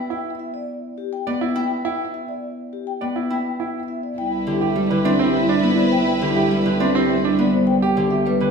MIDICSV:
0, 0, Header, 1, 7, 480
1, 0, Start_track
1, 0, Key_signature, 0, "major"
1, 0, Tempo, 582524
1, 564, Time_signature, 3, 2, 24, 8
1, 7010, End_track
2, 0, Start_track
2, 0, Title_t, "Vibraphone"
2, 0, Program_c, 0, 11
2, 89, Note_on_c, 0, 79, 47
2, 242, Note_off_c, 0, 79, 0
2, 324, Note_on_c, 0, 76, 45
2, 443, Note_on_c, 0, 74, 47
2, 481, Note_off_c, 0, 76, 0
2, 600, Note_off_c, 0, 74, 0
2, 804, Note_on_c, 0, 67, 49
2, 928, Note_on_c, 0, 79, 59
2, 961, Note_off_c, 0, 67, 0
2, 1082, Note_off_c, 0, 79, 0
2, 1284, Note_on_c, 0, 79, 80
2, 1441, Note_off_c, 0, 79, 0
2, 1523, Note_on_c, 0, 79, 56
2, 1680, Note_off_c, 0, 79, 0
2, 1764, Note_on_c, 0, 76, 55
2, 1882, Note_on_c, 0, 74, 43
2, 1921, Note_off_c, 0, 76, 0
2, 2040, Note_off_c, 0, 74, 0
2, 2248, Note_on_c, 0, 67, 41
2, 2365, Note_on_c, 0, 79, 53
2, 2402, Note_off_c, 0, 67, 0
2, 2521, Note_off_c, 0, 79, 0
2, 2723, Note_on_c, 0, 79, 56
2, 2880, Note_off_c, 0, 79, 0
2, 2965, Note_on_c, 0, 79, 40
2, 3121, Note_off_c, 0, 79, 0
2, 3199, Note_on_c, 0, 76, 47
2, 3324, Note_on_c, 0, 74, 43
2, 3359, Note_off_c, 0, 76, 0
2, 3445, Note_on_c, 0, 79, 77
2, 3480, Note_off_c, 0, 74, 0
2, 3601, Note_off_c, 0, 79, 0
2, 3683, Note_on_c, 0, 67, 56
2, 3803, Note_on_c, 0, 76, 63
2, 3840, Note_off_c, 0, 67, 0
2, 3960, Note_off_c, 0, 76, 0
2, 4158, Note_on_c, 0, 76, 70
2, 4278, Note_on_c, 0, 67, 53
2, 4318, Note_off_c, 0, 76, 0
2, 4406, Note_on_c, 0, 76, 54
2, 4439, Note_off_c, 0, 67, 0
2, 4561, Note_off_c, 0, 76, 0
2, 4638, Note_on_c, 0, 74, 58
2, 4760, Note_on_c, 0, 72, 52
2, 4799, Note_off_c, 0, 74, 0
2, 4876, Note_on_c, 0, 79, 71
2, 4919, Note_off_c, 0, 72, 0
2, 5038, Note_off_c, 0, 79, 0
2, 5124, Note_on_c, 0, 67, 51
2, 5236, Note_on_c, 0, 76, 70
2, 5281, Note_off_c, 0, 67, 0
2, 5398, Note_off_c, 0, 76, 0
2, 5604, Note_on_c, 0, 76, 68
2, 5723, Note_on_c, 0, 67, 58
2, 5760, Note_off_c, 0, 76, 0
2, 5849, Note_on_c, 0, 76, 57
2, 5880, Note_off_c, 0, 67, 0
2, 6002, Note_off_c, 0, 76, 0
2, 6093, Note_on_c, 0, 74, 54
2, 6210, Note_on_c, 0, 72, 57
2, 6244, Note_off_c, 0, 74, 0
2, 6320, Note_on_c, 0, 79, 71
2, 6363, Note_off_c, 0, 72, 0
2, 6479, Note_off_c, 0, 79, 0
2, 6564, Note_on_c, 0, 67, 50
2, 6679, Note_on_c, 0, 76, 65
2, 6721, Note_off_c, 0, 67, 0
2, 6803, Note_on_c, 0, 71, 58
2, 6839, Note_off_c, 0, 76, 0
2, 6960, Note_off_c, 0, 71, 0
2, 7010, End_track
3, 0, Start_track
3, 0, Title_t, "Violin section"
3, 0, Program_c, 1, 48
3, 3444, Note_on_c, 1, 71, 61
3, 3447, Note_on_c, 1, 64, 62
3, 6172, Note_off_c, 1, 71, 0
3, 6173, Note_off_c, 1, 64, 0
3, 7010, End_track
4, 0, Start_track
4, 0, Title_t, "French horn"
4, 0, Program_c, 2, 60
4, 3444, Note_on_c, 2, 64, 35
4, 3620, Note_off_c, 2, 64, 0
4, 3695, Note_on_c, 2, 64, 47
4, 3871, Note_off_c, 2, 64, 0
4, 3942, Note_on_c, 2, 64, 49
4, 4119, Note_off_c, 2, 64, 0
4, 4205, Note_on_c, 2, 64, 57
4, 4378, Note_off_c, 2, 64, 0
4, 4455, Note_on_c, 2, 64, 62
4, 4628, Note_off_c, 2, 64, 0
4, 4705, Note_on_c, 2, 64, 69
4, 4879, Note_off_c, 2, 64, 0
4, 4947, Note_on_c, 2, 64, 68
4, 5124, Note_off_c, 2, 64, 0
4, 5205, Note_on_c, 2, 64, 58
4, 5379, Note_off_c, 2, 64, 0
4, 5457, Note_on_c, 2, 64, 54
4, 5631, Note_off_c, 2, 64, 0
4, 5708, Note_on_c, 2, 64, 42
4, 5882, Note_off_c, 2, 64, 0
4, 5956, Note_on_c, 2, 64, 34
4, 6131, Note_off_c, 2, 64, 0
4, 7010, End_track
5, 0, Start_track
5, 0, Title_t, "Grand piano"
5, 0, Program_c, 3, 0
5, 84, Note_on_c, 3, 64, 49
5, 240, Note_off_c, 3, 64, 0
5, 1045, Note_on_c, 3, 74, 51
5, 1164, Note_on_c, 3, 64, 59
5, 1201, Note_off_c, 3, 74, 0
5, 1321, Note_off_c, 3, 64, 0
5, 1523, Note_on_c, 3, 64, 59
5, 1680, Note_off_c, 3, 64, 0
5, 2480, Note_on_c, 3, 74, 41
5, 2602, Note_on_c, 3, 64, 44
5, 2639, Note_off_c, 3, 74, 0
5, 2760, Note_off_c, 3, 64, 0
5, 2965, Note_on_c, 3, 64, 48
5, 3121, Note_off_c, 3, 64, 0
5, 3801, Note_on_c, 3, 67, 58
5, 3959, Note_off_c, 3, 67, 0
5, 4041, Note_on_c, 3, 71, 50
5, 4161, Note_on_c, 3, 62, 62
5, 4199, Note_off_c, 3, 71, 0
5, 4279, Note_on_c, 3, 60, 63
5, 4320, Note_off_c, 3, 62, 0
5, 4439, Note_off_c, 3, 60, 0
5, 4524, Note_on_c, 3, 62, 65
5, 4681, Note_off_c, 3, 62, 0
5, 5243, Note_on_c, 3, 67, 65
5, 5400, Note_off_c, 3, 67, 0
5, 5487, Note_on_c, 3, 71, 50
5, 5606, Note_on_c, 3, 62, 59
5, 5641, Note_off_c, 3, 71, 0
5, 5728, Note_on_c, 3, 60, 70
5, 5761, Note_off_c, 3, 62, 0
5, 5882, Note_off_c, 3, 60, 0
5, 5971, Note_on_c, 3, 62, 62
5, 6123, Note_off_c, 3, 62, 0
5, 6447, Note_on_c, 3, 67, 74
5, 6602, Note_off_c, 3, 67, 0
5, 6690, Note_on_c, 3, 67, 55
5, 6843, Note_off_c, 3, 67, 0
5, 6932, Note_on_c, 3, 71, 54
5, 7010, Note_off_c, 3, 71, 0
5, 7010, End_track
6, 0, Start_track
6, 0, Title_t, "Harp"
6, 0, Program_c, 4, 46
6, 0, Note_on_c, 4, 59, 48
6, 0, Note_on_c, 4, 64, 72
6, 1035, Note_off_c, 4, 59, 0
6, 1045, Note_on_c, 4, 59, 54
6, 1272, Note_off_c, 4, 64, 0
6, 1282, Note_on_c, 4, 64, 82
6, 2472, Note_off_c, 4, 59, 0
6, 2482, Note_on_c, 4, 59, 43
6, 2713, Note_off_c, 4, 64, 0
6, 2723, Note_on_c, 4, 64, 60
6, 3681, Note_on_c, 4, 50, 54
6, 3918, Note_on_c, 4, 55, 57
6, 4032, Note_off_c, 4, 50, 0
6, 4042, Note_on_c, 4, 50, 59
6, 4163, Note_on_c, 4, 60, 84
6, 4632, Note_off_c, 4, 59, 0
6, 4641, Note_on_c, 4, 59, 55
6, 5111, Note_off_c, 4, 50, 0
6, 5121, Note_on_c, 4, 50, 60
6, 5355, Note_off_c, 4, 55, 0
6, 5365, Note_on_c, 4, 55, 53
6, 5475, Note_off_c, 4, 50, 0
6, 5485, Note_on_c, 4, 50, 54
6, 5596, Note_off_c, 4, 60, 0
6, 5605, Note_on_c, 4, 60, 83
6, 5936, Note_off_c, 4, 64, 0
6, 6076, Note_off_c, 4, 59, 0
6, 6085, Note_on_c, 4, 59, 63
6, 6555, Note_off_c, 4, 50, 0
6, 6565, Note_on_c, 4, 50, 59
6, 6799, Note_off_c, 4, 55, 0
6, 6809, Note_on_c, 4, 55, 53
6, 6916, Note_off_c, 4, 50, 0
6, 6926, Note_on_c, 4, 50, 58
6, 7010, Note_off_c, 4, 50, 0
6, 7010, Note_off_c, 4, 55, 0
6, 7010, Note_off_c, 4, 59, 0
6, 7010, Note_off_c, 4, 60, 0
6, 7010, End_track
7, 0, Start_track
7, 0, Title_t, "Cello"
7, 0, Program_c, 5, 42
7, 3441, Note_on_c, 5, 36, 57
7, 7010, Note_off_c, 5, 36, 0
7, 7010, End_track
0, 0, End_of_file